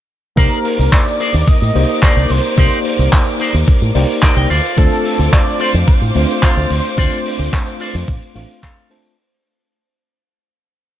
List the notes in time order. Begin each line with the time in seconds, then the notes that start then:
0.36 C2 A#3 D#4 G4 A#4 C5 D5 D6, kick, shaker
0.53 shaker
0.65 open hi-hat
0.78 C2, muted clean electric guitar stroke, shaker
0.92 D5, muted clean electric guitar stroke, kick, clap, shaker
1.06 muted clean electric guitar stroke, shaker
1.20 D#4 A#4 C5 D5, open hi-hat
1.34 D#2, shaker
1.47 D#5, muted clean electric guitar stroke, kick, shaker
1.62 A2, shaker
1.74 C2 A#3 D#4 G4 C5, muted clean electric guitar stroke, open hi-hat
1.90 shaker
2.03 D#4 A#4 C5 D5, kick, clap, shaker
2.17 C2, shaker
2.30 C2 C5, open hi-hat
2.44 shaker
2.57 C2 A#3 D#4 G4 A#4 C5 D5, kick, shaker
2.72 shaker
2.85 open hi-hat
2.99 C2, muted clean electric guitar stroke, shaker
3.13 muted clean electric guitar stroke, kick, clap, shaker
3.27 muted clean electric guitar stroke, shaker
3.39 D#4 A#4 C5 D5, open hi-hat
3.54 D#2, shaker
3.67 muted clean electric guitar stroke, kick, shaker
3.82 A2, shaker
3.95 C2 A#3 D#4 G4 C5 D5, muted clean electric guitar stroke, open hi-hat
4.09 shaker
4.22 D#4 A#4 C5 D5 D#5, kick, clap, shaker
4.37 C2 G5, shaker
4.50 D2 F4 A4 C5 D5 F5 D6, open hi-hat
4.65 shaker
4.77 D2 A3 C4 D4 F4 A4 C5, kick, shaker
4.92 shaker
5.05 open hi-hat
5.19 D2, muted clean electric guitar stroke, shaker
5.32 D5, muted clean electric guitar stroke, kick, clap, shaker
5.47 muted clean electric guitar stroke, shaker
5.59 F4 A4 C5 D5, open hi-hat
5.74 F2, shaker
5.87 C5, muted clean electric guitar stroke, kick, shaker
6.01 A2, shaker
6.14 D2 A3 C4 D4 F4 C5, muted clean electric guitar stroke, open hi-hat
6.30 shaker
6.42 F4 A4 C5 F5, kick, clap, shaker
6.57 D2, shaker
6.70 D2, open hi-hat
6.85 shaker
6.97 D2 A3 C4 D4 F4 A4 C5 D5, kick, shaker
7.13 shaker
7.25 open hi-hat
7.39 D2, muted clean electric guitar stroke, shaker
7.52 muted clean electric guitar stroke, kick, clap, shaker
7.66 muted clean electric guitar stroke, shaker
7.80 F4 A4 C5 D5, open hi-hat
7.95 F2, shaker
8.08 A1, muted clean electric guitar stroke, kick, shaker
8.22 shaker
8.35 A1 A3 C4 D4 F4 C5 F5, muted clean electric guitar stroke, open hi-hat
8.50 shaker
8.62 F4 A4 C5 F5, kick, clap, shaker
8.77 shaker
8.90 A3 C4 D4 F4 C5 A5, open hi-hat
9.05 shaker